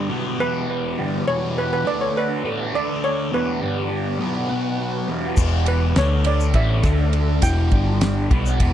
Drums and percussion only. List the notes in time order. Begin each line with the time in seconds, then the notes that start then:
5.37 kick, crash, shaker
5.66 ride
5.96 snare, ride
6.24 ride
6.40 shaker
6.54 kick, ride
6.83 kick, snare, ride, shaker
7.13 ride
7.42 kick, ride, shaker
7.71 kick, ride
8.01 snare, ride
8.31 kick, ride
8.46 shaker
8.60 kick, ride